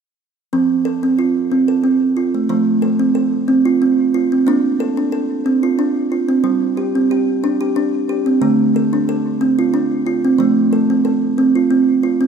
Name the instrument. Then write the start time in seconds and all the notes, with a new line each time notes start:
kalimba
0.53 F3 C4
0.85 A4
1.03 C4
1.19 F4
1.52 C4
1.68 A4
1.84 C4
2.17 F4
2.35 A3
2.49 F3 A3
2.82 A4
3.00 C4
3.15 A4
3.48 C4
3.65 F4
3.82 C4
4.14 F4
4.32 C4
4.47 A#3 D4
4.80 A4
4.97 D4
5.12 A4
5.46 C4
5.63 F4
5.79 D4
6.12 F4
6.29 C4
6.44 G3
6.77 G4
6.95 C4
7.11 G4
7.44 D4
7.61 G4
7.76 D4
8.09 G4
8.26 C4
8.41 D3 A3
8.76 A4
8.93 D4
9.09 A4
9.41 C4
9.59 F4
9.74 D4
10.07 F4
10.25 C4
10.38 F3 A3
10.73 A4
10.90 C4
11.05 A4
11.38 C4
11.55 F4
11.71 C4
12.03 F4
12.21 C4